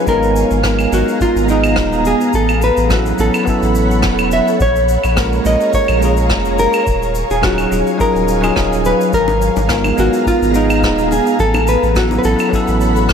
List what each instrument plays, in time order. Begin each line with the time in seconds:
0.06 sub bass G#1, tine electric piano G#3 B3 D#4 F4 A#4, ambient pad B3 G#4 F5 A#5, nylon-string guitar A#4, kick, shaker
0.23 shaker
0.36 shaker
0.51 sub bass G#1, shaker
0.62 tine electric piano G#3 B3 D#4 F4 A#4, kick, cross-stick, shaker
0.79 claves, shaker
0.91 sub bass G#1, tine electric piano G#3 B3 D#4 F4 A#4, nylon-string guitar F#4, shaker
1.08 shaker
1.20 nylon-string guitar F4, kick, shaker
1.35 sub bass G#1, shaker
1.45 tine electric piano G#3 B3 D#4, shaker
1.50 nylon-string guitar D#4, tine electric piano F4 G#4
1.64 claves, shaker
1.76 sub bass D#1, kick, cross-stick, shaker
1.92 shaker
2.05 nylon-string guitar G#4, shaker
2.21 shaker
2.33 sub bass A1, ambient pad A4 C#5 F#5 B5, nylon-string guitar A4, kick, shaker
2.49 claves, shaker
2.62 nylon-string guitar B4, shaker
2.77 sub bass A1, shaker
2.88 tine electric piano F#3 B3 C#4 E4 A4, kick, cross-stick, shaker
2.92 nylon-string guitar F#4
3.06 shaker
3.17 sub bass A1, tine electric piano F#3 B3 C#4 E4 A4, nylon-string guitar A4, shaker
3.34 claves, shaker
3.44 tine electric piano F#3 B3 C#4, kick, shaker
3.48 tine electric piano E4 A4
3.62 sub bass A1, shaker
3.75 shaker
3.91 shaker
4.02 sub bass E1, kick, cross-stick, shaker
4.19 claves, shaker
4.31 nylon-string guitar E5, shaker
4.48 shaker
4.59 sub bass A#1, ambient pad G#4 F5 A#5, nylon-string guitar C#5, kick, shaker
4.76 shaker
4.89 shaker
5.03 sub bass A#1, claves, shaker
5.15 tine electric piano G#3 A#3 C#4 F4 A#4, kick, cross-stick, shaker
5.32 shaker
5.43 sub bass A#1, tine electric piano G#3 A#3 C#4 F4 A#4, nylon-string guitar D#5, shaker
5.61 shaker
5.73 nylon-string guitar C#5, kick, shaker
5.88 sub bass A#1, claves, shaker
5.98 tine electric piano G#3 A#3 C#4, shaker
6.03 tine electric piano F4 G#4
6.17 shaker
6.30 sub bass F1, kick, cross-stick, shaker
6.45 shaker
6.59 nylon-string guitar A#4, shaker
6.73 claves, shaker
6.86 sub bass D#1, ambient pad F#3 F5 G#5, kick, shaker
7.03 shaker
7.15 shaker
7.30 sub bass D#1, nylon-string guitar G#4, shaker
7.41 tine electric piano F#3 C#4 D#4 F4 G#4, nylon-string guitar F#4, kick, cross-stick, shaker
7.58 claves, shaker
7.70 sub bass D#1, tine electric piano F#3 C#4 D#4 F4 G#4, shaker
7.87 shaker
7.98 tine electric piano F#3 C#4 D#4 F4 G#4, nylon-string guitar A#4, kick, shaker
8.15 sub bass D#1, shaker
8.28 shaker
8.41 tine electric piano F#3 C#4 D#4 F4 G#4, claves, shaker
8.54 sub bass D#1, tine electric piano F#3 C#4 D#4 F4 G#4, kick, cross-stick, shaker
8.73 shaker
8.85 nylon-string guitar B4, shaker
9.01 shaker
9.13 sub bass G#1, ambient pad B3 G#4 F5 A#5, nylon-string guitar A#4, kick, shaker
9.28 high bongo, shaker
9.42 shaker
9.56 sub bass G#1, high bongo, shaker
9.68 tine electric piano G#3 B3 D#4 F4 A#4, kick, cross-stick, shaker
9.84 high bongo, claves, shaker
9.96 sub bass G#1, tine electric piano G#3 B3 D#4 F4 A#4, nylon-string guitar F#4, shaker
10.13 shaker
10.26 nylon-string guitar F4, kick, shaker
10.41 sub bass G#1, shaker
10.51 tine electric piano G#3 B3 D#4, shaker
10.56 nylon-string guitar D#4, tine electric piano F4 G#4
10.70 claves, shaker
10.83 sub bass D#1, kick, cross-stick, shaker
10.98 shaker
11.11 nylon-string guitar G#4, high bongo, shaker
11.27 shaker
11.39 sub bass A1, ambient pad A4 C#5 F#5 B5, nylon-string guitar A4, kick, shaker
11.54 high bongo, claves, shaker
11.67 nylon-string guitar B4, shaker
11.83 sub bass A1, shaker
11.94 tine electric piano F#3 B3 C#4 E4 A4, nylon-string guitar F#4, kick, cross-stick, shaker
12.11 high bongo, shaker
12.18 tine electric piano F#3, nylon-string guitar B4
12.23 sub bass A1, tine electric piano B3 C#4 E4 A4, nylon-string guitar A4, shaker
12.39 claves, shaker
12.49 tine electric piano F#3 B3 C#4, kick
12.53 tine electric piano E4 A4, shaker
12.68 sub bass A1, shaker
12.81 shaker
12.96 shaker
13.09 sub bass E1, kick, cross-stick, shaker